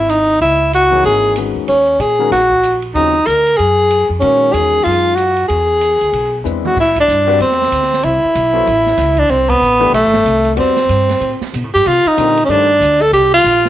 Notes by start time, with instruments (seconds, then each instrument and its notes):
Already playing: upright bass G#1, tenor saxophone E4
0.09 tenor saxophone D#4, hi-hat pedal, ride
0.41 upright bass C#2, tenor saxophone E4, ride
0.73 tenor saxophone F#4, hi-hat pedal, ride
0.91 grand piano E3 A#3 D#4 G#4 C#5
1.04 upright bass G#1, tenor saxophone G#4, ride
1.36 grand piano D#3 G#3 C#4 F#4 B4, hi-hat pedal, ride
1.55 upright bass E2
1.68 upright bass D#2, tenor saxophone C#4, ride
1.99 upright bass A#2, tenor saxophone G#4, hi-hat pedal, ride
2.19 grand piano D#3 G#3 C#4 F#4 A#4
2.31 upright bass A#1, tenor saxophone F#4, snare, ride
2.51 kick
2.63 hi-hat pedal, ride
2.82 ride
2.94 upright bass D#2, grand piano C#3 F#3 C4 F4 G#4, tenor saxophone D#4, ride
3.14 ride
3.27 upright bass D2, tenor saxophone A#4, hi-hat pedal, ride
3.47 ride
3.57 upright bass F#2, tenor saxophone G#4, ride
3.91 hi-hat pedal, ride
4.09 upright bass F2
4.20 upright bass A#2, grand piano D#3 G#3 C#4 F#4 A#4, tenor saxophone C#4, ride
4.53 upright bass E2, tenor saxophone G#4, hi-hat pedal, ride
4.84 upright bass F#2, tenor saxophone F4, ride
5.15 tenor saxophone F#4, hi-hat pedal, ride
5.37 ride
5.48 upright bass E2, tenor saxophone G#4, ride
5.81 hi-hat pedal, ride
6.01 upright bass D2, ride
6.12 upright bass B1, ride
6.44 upright bass E2, grand piano G#3 C4 D4 E4 B4, hi-hat pedal
6.65 tenor saxophone F#4, mid tom
6.76 upright bass A2, tenor saxophone E4, kick, crash
6.96 kick, ride
7.00 tenor saxophone D4
7.08 upright bass G2, hi-hat pedal
7.27 grand piano G3 C4 F#4 B4 D5
7.40 upright bass E2, tenor saxophone C4, ride
7.51 snare
7.62 snare
7.71 upright bass D2, hi-hat pedal, ride
7.83 snare
7.93 snare
8.03 upright bass C2, tenor saxophone E4, ride
8.24 muted upright bass stroke
8.35 upright bass B1, hi-hat pedal, ride
8.53 grand piano F#3 B3 E4 A4 C5
8.67 upright bass A1, ride
8.86 snare
8.97 upright bass C#2, snare, hi-hat pedal, ride
9.17 tenor saxophone D4, kick, ride
9.29 upright bass C2, tenor saxophone C4, ride
9.49 tenor saxophone B3, kick, ride
9.61 upright bass A1, hi-hat pedal
9.79 grand piano E3 A3 D4 G4 B4
9.92 upright bass B1, tenor saxophone A3, ride
10.04 upright bass A1
10.13 upright bass G1, snare
10.25 upright bass C2, hi-hat pedal, ride
10.45 ride
10.56 upright bass E2, grand piano G3 C4 F#4 B4 D5, tenor saxophone C4, ride
10.77 snare, ride
10.89 upright bass G2, hi-hat pedal, ride
11.09 snare, ride
11.20 upright bass A2, ride
11.41 muted upright bass stroke, snare
11.53 upright bass B2, hi-hat pedal, ride
11.64 upright bass A2
11.74 upright bass G2, tenor saxophone G4
11.86 upright bass C3, tenor saxophone F4, ride
12.05 tenor saxophone D#4, muted upright bass stroke
12.17 upright bass A#2, grand piano D3 G3 C4 F4 A#4, hi-hat pedal, ride
12.37 ride
12.45 upright bass G2, grand piano D#3 A3 D4 G4, tenor saxophone C#4
12.50 tenor saxophone D4, grand piano C5, ride
12.80 upright bass D2, hi-hat pedal, ride
13.01 tenor saxophone A4, ride
13.12 upright bass C2, tenor saxophone G4, ride
13.34 tenor saxophone F4
13.44 upright bass A#1, hi-hat pedal, ride
13.65 snare